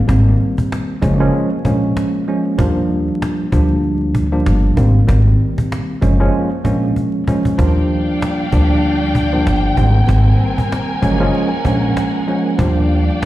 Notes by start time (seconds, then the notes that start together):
0.08 G#1 D#3 G3 A#3 C4, cajon bass
0.27 cajon slap
0.40 cajon slap
0.58 cajon bass
0.72 cajon slap
0.89 cajon slap
1.01 F#1 F3 G#3 A#3 C#4, cajon bass
1.20 F3 G#3 A#3 C#4
1.34 cajon slap
1.52 cajon slap
1.65 A#1 F3 G#3 A#3 C#4, cajon bass
1.83 cajon slap
1.97 cajon slap
2.14 cajon slap
2.27 F3 G#3 A#3 C#4, cajon slap
2.45 cajon slap
2.58 D#2 F3 G3 A#3 D4, cajon bass
2.77 cajon slap
2.90 cajon slap
3.08 cajon slap
3.22 cajon slap
3.38 cajon slap
3.52 D2 F3 G3 A#3 D4, cajon bass
3.70 cajon slap
3.84 cajon slap
4.01 cajon slap
4.15 cajon bass
4.32 F3 G3 A#3 D4, cajon slap
4.46 G1, cajon slap
4.64 cajon slap
4.77 G#1 D#3 G3 A#3 C4, cajon bass
4.95 cajon slap
5.07 G#1 D#3 G3 A#3 C4, cajon bass
5.26 cajon slap
5.40 cajon slap
5.58 cajon bass
5.72 cajon slap
5.88 cajon slap
6.01 F#1 F3 G#3 A#3 C#4, cajon bass
6.20 F3 G#3 A#3 C#4
6.34 cajon slap
6.52 cajon slap
6.64 A#1 F3 G#3 A#3 C#4, cajon bass
6.83 cajon slap
6.96 cajon bass, cajon slap
7.14 cajon slap
7.27 F3 G#3 A#3 C#4, cajon bass
7.45 cajon bass
7.58 D#2 F3 G3 A#3 D4 D5 F5 G5, cajon bass
7.77 cajon slap
7.90 cajon slap
8.08 cajon slap
8.22 cajon slap
8.39 cajon slap
8.52 D2 F3 G3 A#3 D4, cajon bass
8.70 cajon slap
8.84 cajon slap
9.02 cajon slap
9.15 cajon bass
9.33 F3 G3 A#3 D4, cajon slap
9.47 G1, cajon slap
9.64 cajon slap
9.77 G#1 D#3 G3 A#3 C4 A#4 G#5, cajon bass
9.95 cajon slap
10.07 G#1 D#3 G3 A#3 C4, cajon bass
10.27 cajon slap
10.40 cajon slap
10.58 cajon bass
10.72 cajon slap
10.89 cajon slap
11.01 F#1 F3 G#3 A#3 C#4 F#5, cajon bass
11.20 F3 G#3 A#3 C#4, cajon slap
11.34 cajon slap
11.52 cajon slap
11.64 A#1 F3 G#3 A#3 C#4, cajon bass
11.84 cajon slap
11.97 cajon slap
12.14 cajon slap
12.27 F3 G#3 A#3 C#4, cajon slap
12.46 cajon slap
12.58 D#2 F3 G3 A#3 D4 D5 F5 G5, cajon bass
12.77 cajon slap
12.90 cajon slap
13.08 cajon slap